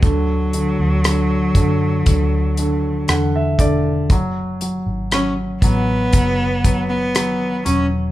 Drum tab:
HH |xxxxxxxx|xxxxxxxx|
SD |--r---r-|--r---r-|
BD |o--oo--o|o--ooo--|